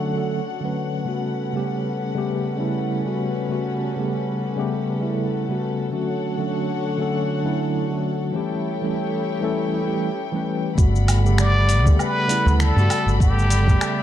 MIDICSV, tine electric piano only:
0, 0, Header, 1, 2, 480
1, 0, Start_track
1, 0, Tempo, 606061
1, 851, Time_signature, 4, 2, 24, 8
1, 11110, End_track
2, 0, Start_track
2, 0, Title_t, "Tine electric piano"
2, 0, Program_c, 0, 4
2, 0, Note_on_c, 0, 50, 81
2, 0, Note_on_c, 0, 54, 79
2, 0, Note_on_c, 0, 57, 79
2, 0, Note_on_c, 0, 61, 82
2, 0, Note_on_c, 0, 69, 94
2, 97, Note_off_c, 0, 50, 0
2, 100, Note_off_c, 0, 54, 0
2, 105, Note_off_c, 0, 57, 0
2, 107, Note_on_c, 0, 50, 62
2, 109, Note_off_c, 0, 61, 0
2, 113, Note_off_c, 0, 69, 0
2, 116, Note_on_c, 0, 54, 56
2, 126, Note_on_c, 0, 57, 54
2, 131, Note_on_c, 0, 61, 55
2, 138, Note_on_c, 0, 69, 73
2, 302, Note_off_c, 0, 50, 0
2, 307, Note_off_c, 0, 54, 0
2, 311, Note_off_c, 0, 57, 0
2, 314, Note_off_c, 0, 61, 0
2, 318, Note_off_c, 0, 69, 0
2, 480, Note_on_c, 0, 50, 76
2, 492, Note_on_c, 0, 54, 71
2, 497, Note_on_c, 0, 57, 64
2, 507, Note_on_c, 0, 61, 68
2, 515, Note_on_c, 0, 71, 85
2, 812, Note_off_c, 0, 50, 0
2, 818, Note_off_c, 0, 54, 0
2, 821, Note_off_c, 0, 57, 0
2, 826, Note_off_c, 0, 61, 0
2, 829, Note_off_c, 0, 71, 0
2, 829, Note_on_c, 0, 49, 66
2, 836, Note_on_c, 0, 55, 58
2, 846, Note_on_c, 0, 57, 59
2, 852, Note_on_c, 0, 59, 59
2, 860, Note_on_c, 0, 66, 72
2, 1185, Note_off_c, 0, 49, 0
2, 1189, Note_off_c, 0, 55, 0
2, 1193, Note_off_c, 0, 57, 0
2, 1196, Note_off_c, 0, 59, 0
2, 1200, Note_off_c, 0, 66, 0
2, 1208, Note_on_c, 0, 49, 65
2, 1216, Note_on_c, 0, 55, 68
2, 1225, Note_on_c, 0, 57, 60
2, 1233, Note_on_c, 0, 59, 63
2, 1242, Note_on_c, 0, 67, 82
2, 1666, Note_off_c, 0, 49, 0
2, 1669, Note_off_c, 0, 55, 0
2, 1674, Note_off_c, 0, 57, 0
2, 1678, Note_off_c, 0, 59, 0
2, 1682, Note_off_c, 0, 67, 0
2, 1697, Note_on_c, 0, 49, 85
2, 1702, Note_on_c, 0, 55, 79
2, 1715, Note_on_c, 0, 57, 78
2, 1720, Note_on_c, 0, 59, 77
2, 1728, Note_on_c, 0, 67, 95
2, 2021, Note_off_c, 0, 49, 0
2, 2023, Note_off_c, 0, 55, 0
2, 2030, Note_off_c, 0, 57, 0
2, 2030, Note_on_c, 0, 49, 74
2, 2032, Note_off_c, 0, 59, 0
2, 2036, Note_off_c, 0, 67, 0
2, 2037, Note_on_c, 0, 55, 70
2, 2047, Note_on_c, 0, 57, 68
2, 2052, Note_on_c, 0, 59, 67
2, 2061, Note_on_c, 0, 64, 79
2, 2385, Note_off_c, 0, 49, 0
2, 2389, Note_off_c, 0, 55, 0
2, 2394, Note_off_c, 0, 57, 0
2, 2396, Note_off_c, 0, 59, 0
2, 2401, Note_off_c, 0, 64, 0
2, 2408, Note_on_c, 0, 49, 66
2, 2418, Note_on_c, 0, 55, 64
2, 2425, Note_on_c, 0, 57, 61
2, 2431, Note_on_c, 0, 59, 66
2, 2441, Note_on_c, 0, 66, 74
2, 2736, Note_off_c, 0, 49, 0
2, 2741, Note_off_c, 0, 55, 0
2, 2745, Note_off_c, 0, 57, 0
2, 2747, Note_off_c, 0, 59, 0
2, 2753, Note_off_c, 0, 66, 0
2, 2757, Note_on_c, 0, 49, 62
2, 2766, Note_on_c, 0, 55, 58
2, 2773, Note_on_c, 0, 57, 58
2, 2777, Note_on_c, 0, 59, 58
2, 2787, Note_on_c, 0, 66, 76
2, 3109, Note_off_c, 0, 49, 0
2, 3113, Note_off_c, 0, 55, 0
2, 3117, Note_off_c, 0, 57, 0
2, 3119, Note_off_c, 0, 59, 0
2, 3124, Note_off_c, 0, 66, 0
2, 3134, Note_on_c, 0, 49, 71
2, 3143, Note_on_c, 0, 55, 69
2, 3151, Note_on_c, 0, 57, 64
2, 3160, Note_on_c, 0, 59, 67
2, 3163, Note_on_c, 0, 67, 74
2, 3588, Note_off_c, 0, 49, 0
2, 3593, Note_off_c, 0, 55, 0
2, 3597, Note_off_c, 0, 57, 0
2, 3601, Note_off_c, 0, 59, 0
2, 3603, Note_off_c, 0, 67, 0
2, 3613, Note_on_c, 0, 49, 89
2, 3618, Note_on_c, 0, 55, 79
2, 3626, Note_on_c, 0, 57, 80
2, 3632, Note_on_c, 0, 59, 84
2, 3640, Note_on_c, 0, 67, 101
2, 3938, Note_off_c, 0, 49, 0
2, 3941, Note_off_c, 0, 55, 0
2, 3945, Note_off_c, 0, 57, 0
2, 3948, Note_off_c, 0, 59, 0
2, 3952, Note_off_c, 0, 67, 0
2, 3953, Note_on_c, 0, 49, 75
2, 3963, Note_on_c, 0, 55, 69
2, 3969, Note_on_c, 0, 57, 69
2, 3979, Note_on_c, 0, 59, 67
2, 3984, Note_on_c, 0, 64, 80
2, 4307, Note_off_c, 0, 49, 0
2, 4312, Note_off_c, 0, 55, 0
2, 4315, Note_off_c, 0, 57, 0
2, 4320, Note_off_c, 0, 59, 0
2, 4322, Note_off_c, 0, 64, 0
2, 4341, Note_on_c, 0, 49, 70
2, 4348, Note_on_c, 0, 55, 63
2, 4354, Note_on_c, 0, 57, 64
2, 4361, Note_on_c, 0, 59, 65
2, 4370, Note_on_c, 0, 66, 74
2, 4662, Note_off_c, 0, 49, 0
2, 4666, Note_off_c, 0, 55, 0
2, 4669, Note_off_c, 0, 57, 0
2, 4672, Note_on_c, 0, 50, 65
2, 4673, Note_off_c, 0, 59, 0
2, 4677, Note_off_c, 0, 66, 0
2, 4677, Note_on_c, 0, 54, 60
2, 4684, Note_on_c, 0, 57, 62
2, 4695, Note_on_c, 0, 61, 62
2, 4699, Note_on_c, 0, 66, 77
2, 5027, Note_off_c, 0, 50, 0
2, 5029, Note_off_c, 0, 54, 0
2, 5032, Note_off_c, 0, 57, 0
2, 5038, Note_off_c, 0, 61, 0
2, 5040, Note_off_c, 0, 66, 0
2, 5049, Note_on_c, 0, 50, 70
2, 5052, Note_on_c, 0, 54, 64
2, 5062, Note_on_c, 0, 57, 67
2, 5070, Note_on_c, 0, 61, 68
2, 5079, Note_on_c, 0, 69, 79
2, 5506, Note_off_c, 0, 50, 0
2, 5507, Note_off_c, 0, 54, 0
2, 5512, Note_off_c, 0, 57, 0
2, 5516, Note_off_c, 0, 61, 0
2, 5521, Note_off_c, 0, 69, 0
2, 5525, Note_on_c, 0, 50, 88
2, 5530, Note_on_c, 0, 54, 86
2, 5538, Note_on_c, 0, 57, 80
2, 5544, Note_on_c, 0, 61, 83
2, 5557, Note_on_c, 0, 69, 99
2, 5854, Note_off_c, 0, 50, 0
2, 5857, Note_off_c, 0, 54, 0
2, 5861, Note_off_c, 0, 57, 0
2, 5864, Note_off_c, 0, 61, 0
2, 5870, Note_off_c, 0, 69, 0
2, 5872, Note_on_c, 0, 50, 71
2, 5881, Note_on_c, 0, 54, 72
2, 5889, Note_on_c, 0, 57, 65
2, 5898, Note_on_c, 0, 61, 73
2, 5907, Note_on_c, 0, 64, 88
2, 6227, Note_off_c, 0, 50, 0
2, 6231, Note_off_c, 0, 54, 0
2, 6235, Note_off_c, 0, 57, 0
2, 6239, Note_off_c, 0, 61, 0
2, 6244, Note_off_c, 0, 64, 0
2, 6251, Note_on_c, 0, 50, 72
2, 6256, Note_on_c, 0, 54, 67
2, 6263, Note_on_c, 0, 57, 67
2, 6275, Note_on_c, 0, 61, 62
2, 6283, Note_on_c, 0, 66, 82
2, 6578, Note_off_c, 0, 50, 0
2, 6580, Note_off_c, 0, 54, 0
2, 6584, Note_off_c, 0, 57, 0
2, 6590, Note_off_c, 0, 61, 0
2, 6590, Note_on_c, 0, 52, 71
2, 6593, Note_off_c, 0, 66, 0
2, 6603, Note_on_c, 0, 55, 60
2, 6612, Note_on_c, 0, 57, 61
2, 6616, Note_on_c, 0, 61, 58
2, 6622, Note_on_c, 0, 67, 76
2, 6945, Note_off_c, 0, 52, 0
2, 6952, Note_off_c, 0, 55, 0
2, 6956, Note_off_c, 0, 57, 0
2, 6958, Note_off_c, 0, 61, 0
2, 6961, Note_off_c, 0, 67, 0
2, 6979, Note_on_c, 0, 52, 70
2, 6986, Note_on_c, 0, 55, 66
2, 6992, Note_on_c, 0, 57, 68
2, 6997, Note_on_c, 0, 61, 69
2, 7005, Note_on_c, 0, 69, 79
2, 7431, Note_off_c, 0, 52, 0
2, 7435, Note_off_c, 0, 55, 0
2, 7437, Note_off_c, 0, 57, 0
2, 7440, Note_off_c, 0, 61, 0
2, 7444, Note_off_c, 0, 69, 0
2, 7451, Note_on_c, 0, 52, 90
2, 7457, Note_on_c, 0, 55, 80
2, 7463, Note_on_c, 0, 57, 83
2, 7472, Note_on_c, 0, 61, 85
2, 7477, Note_on_c, 0, 69, 106
2, 7777, Note_off_c, 0, 52, 0
2, 7781, Note_off_c, 0, 55, 0
2, 7784, Note_off_c, 0, 57, 0
2, 7788, Note_off_c, 0, 61, 0
2, 7791, Note_off_c, 0, 69, 0
2, 7796, Note_on_c, 0, 52, 69
2, 7802, Note_on_c, 0, 55, 61
2, 7812, Note_on_c, 0, 57, 64
2, 7821, Note_on_c, 0, 61, 63
2, 7826, Note_on_c, 0, 69, 71
2, 7986, Note_off_c, 0, 52, 0
2, 7990, Note_off_c, 0, 55, 0
2, 7995, Note_off_c, 0, 57, 0
2, 7999, Note_off_c, 0, 61, 0
2, 8002, Note_off_c, 0, 69, 0
2, 8171, Note_on_c, 0, 52, 81
2, 8179, Note_on_c, 0, 55, 69
2, 8187, Note_on_c, 0, 57, 73
2, 8192, Note_on_c, 0, 61, 75
2, 8205, Note_on_c, 0, 71, 92
2, 8497, Note_off_c, 0, 52, 0
2, 8502, Note_off_c, 0, 55, 0
2, 8505, Note_off_c, 0, 57, 0
2, 8508, Note_off_c, 0, 61, 0
2, 8512, Note_on_c, 0, 49, 73
2, 8515, Note_off_c, 0, 71, 0
2, 8520, Note_on_c, 0, 55, 67
2, 8529, Note_on_c, 0, 57, 63
2, 8539, Note_on_c, 0, 59, 69
2, 8545, Note_on_c, 0, 66, 83
2, 8867, Note_off_c, 0, 49, 0
2, 8870, Note_off_c, 0, 55, 0
2, 8875, Note_off_c, 0, 57, 0
2, 8880, Note_off_c, 0, 59, 0
2, 8883, Note_off_c, 0, 66, 0
2, 8890, Note_on_c, 0, 49, 78
2, 8895, Note_on_c, 0, 55, 74
2, 8903, Note_on_c, 0, 57, 72
2, 8914, Note_on_c, 0, 59, 70
2, 8921, Note_on_c, 0, 67, 94
2, 9346, Note_off_c, 0, 49, 0
2, 9349, Note_off_c, 0, 55, 0
2, 9353, Note_off_c, 0, 57, 0
2, 9359, Note_off_c, 0, 59, 0
2, 9362, Note_off_c, 0, 67, 0
2, 9375, Note_on_c, 0, 49, 97
2, 9384, Note_on_c, 0, 55, 91
2, 9392, Note_on_c, 0, 57, 88
2, 9398, Note_on_c, 0, 59, 84
2, 9407, Note_on_c, 0, 67, 111
2, 9699, Note_off_c, 0, 49, 0
2, 9704, Note_off_c, 0, 55, 0
2, 9708, Note_off_c, 0, 57, 0
2, 9711, Note_off_c, 0, 59, 0
2, 9715, Note_off_c, 0, 67, 0
2, 9717, Note_on_c, 0, 49, 86
2, 9728, Note_on_c, 0, 55, 82
2, 9737, Note_on_c, 0, 57, 76
2, 9741, Note_on_c, 0, 59, 77
2, 9749, Note_on_c, 0, 64, 91
2, 10069, Note_off_c, 0, 49, 0
2, 10074, Note_off_c, 0, 55, 0
2, 10079, Note_off_c, 0, 57, 0
2, 10081, Note_off_c, 0, 59, 0
2, 10085, Note_off_c, 0, 64, 0
2, 10097, Note_on_c, 0, 49, 75
2, 10108, Note_on_c, 0, 55, 75
2, 10116, Note_on_c, 0, 57, 73
2, 10120, Note_on_c, 0, 59, 71
2, 10133, Note_on_c, 0, 66, 91
2, 10420, Note_off_c, 0, 49, 0
2, 10426, Note_off_c, 0, 55, 0
2, 10430, Note_off_c, 0, 57, 0
2, 10432, Note_off_c, 0, 59, 0
2, 10439, Note_off_c, 0, 66, 0
2, 10443, Note_on_c, 0, 49, 75
2, 10449, Note_on_c, 0, 55, 65
2, 10457, Note_on_c, 0, 57, 72
2, 10465, Note_on_c, 0, 59, 70
2, 10475, Note_on_c, 0, 78, 83
2, 10792, Note_off_c, 0, 49, 0
2, 10795, Note_off_c, 0, 55, 0
2, 10799, Note_off_c, 0, 57, 0
2, 10803, Note_off_c, 0, 59, 0
2, 10808, Note_off_c, 0, 78, 0
2, 10818, Note_on_c, 0, 49, 80
2, 10826, Note_on_c, 0, 55, 69
2, 10836, Note_on_c, 0, 57, 76
2, 10844, Note_on_c, 0, 59, 75
2, 10850, Note_on_c, 0, 67, 85
2, 11110, Note_off_c, 0, 49, 0
2, 11110, Note_off_c, 0, 55, 0
2, 11110, Note_off_c, 0, 57, 0
2, 11110, Note_off_c, 0, 59, 0
2, 11110, Note_off_c, 0, 67, 0
2, 11110, End_track
0, 0, End_of_file